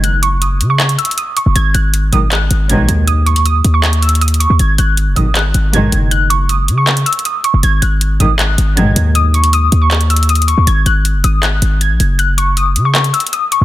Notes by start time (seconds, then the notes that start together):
Already playing: F#1
0.04 F#6, closed hi-hat
0.23 C#6, closed hi-hat
0.42 D#6, closed hi-hat
0.61 C#3, closed hi-hat
0.70 C#6
0.80 clap, closed hi-hat
0.89 closed hi-hat
0.98 E6, closed hi-hat
1.05 closed hi-hat
1.11 closed hi-hat
1.18 D#6, closed hi-hat
1.37 C#6, closed hi-hat
1.46 F#1
1.55 G#1 G#6, closed hi-hat
1.74 G#1 F#6, closed hi-hat
1.94 closed hi-hat
2.13 G#1 B1 G#2 D#3 D#6, closed hi-hat
2.31 F#6, clap, closed hi-hat
2.51 G#1, closed hi-hat
2.70 B1 G#2 D#3 G#6, closed hi-hat
2.79 A#1
2.89 D#2, closed hi-hat
3.07 D#6, closed hi-hat
3.26 C#6, closed hi-hat
3.36 closed hi-hat
3.46 D#6, closed hi-hat
3.65 D#2, closed hi-hat
3.74 C#6
3.83 clap, closed hi-hat
3.93 closed hi-hat
4.02 E6, closed hi-hat
4.09 closed hi-hat
4.15 closed hi-hat
4.21 D#6, closed hi-hat
4.28 closed hi-hat
4.34 closed hi-hat
4.40 C#6, closed hi-hat
4.50 D#2
4.59 G#1 G#6, closed hi-hat
4.78 G#1 F#6, closed hi-hat
4.97 closed hi-hat
5.07 F#1
5.16 G#1 B1 G#2 D#3 D#6, closed hi-hat
5.35 F#6, clap, closed hi-hat
5.54 G#1, closed hi-hat
5.73 B1 G#2 D#3 G#6, closed hi-hat
5.83 A#1
5.92 F#1, closed hi-hat
6.11 F#6, closed hi-hat
6.30 C#6, closed hi-hat
6.49 D#6, closed hi-hat
6.68 C#3, closed hi-hat
6.78 C#6
6.87 clap, closed hi-hat
6.97 closed hi-hat
7.06 E6, closed hi-hat
7.13 closed hi-hat
7.19 closed hi-hat
7.25 D#6, closed hi-hat
7.44 C#6, closed hi-hat
7.54 F#1
7.63 G#1 G#6, closed hi-hat
7.82 G#1 F#6, closed hi-hat
8.01 closed hi-hat
8.20 G#1 B1 G#2 D#3 D#6, closed hi-hat
8.39 F#6, clap, closed hi-hat
8.58 G#1, closed hi-hat
8.77 B1 G#2 D#3 G#6, closed hi-hat
8.87 A#1
8.96 D#2, closed hi-hat
9.15 D#6, closed hi-hat
9.34 C#6, closed hi-hat
9.44 closed hi-hat
9.53 D#6, closed hi-hat
9.72 D#2, closed hi-hat
9.82 C#6
9.91 clap, closed hi-hat
10.01 closed hi-hat
10.10 E6, closed hi-hat
10.16 closed hi-hat
10.23 closed hi-hat
10.29 D#6, closed hi-hat
10.35 closed hi-hat
10.42 closed hi-hat
10.48 C#6, closed hi-hat
10.58 D#2
10.67 G#1 G#6, closed hi-hat
10.86 G#1 F#6, closed hi-hat
11.05 closed hi-hat
11.15 F#1
11.24 G#1 D#6, closed hi-hat
11.43 F#6, clap, closed hi-hat
11.62 G#1, closed hi-hat
11.81 G#6, closed hi-hat
11.90 A#1
12.00 F#1, closed hi-hat
12.19 F#6, closed hi-hat
12.38 C#6, closed hi-hat
12.57 D#6, closed hi-hat
12.76 C#3, closed hi-hat
12.85 C#6
12.95 clap, closed hi-hat
13.04 closed hi-hat
13.14 E6, closed hi-hat
13.20 closed hi-hat
13.27 closed hi-hat
13.33 D#6, closed hi-hat
13.52 C#6, closed hi-hat
13.61 F#1